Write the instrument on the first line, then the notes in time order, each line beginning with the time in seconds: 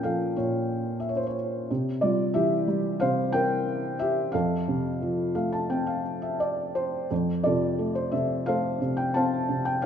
felt piano
Already playing: A#2 F3 C#4 A#4 F5 G5
0.03 F3 A4 F5
0.36 A#2 F4 C#5
1.00 E5
1.09 C#5
1.17 C5
1.27 C#5
1.71 C3
2.01 G3 F4 D5
2.34 E3 G4 E5
2.67 G3
3.00 C3 C5 F5
3.33 A#4 G5
3.99 G4 E5
4.32 F2 A4 F5
4.68 C3
5.02 F3
5.35 A3 F5
5.53 A5
5.70 C4 G5
5.87 F5
6.22 E5
6.40 D5
6.75 C5
7.11 F2
7.43 C3 F4 A4 D5
7.79 A3
7.95 C5
8.12 C3 E5
8.46 A3 A4 C5 F5
8.81 C3
8.97 G5
9.14 C4 C5 F5 A5
9.49 C3
9.65 G5
9.82 F5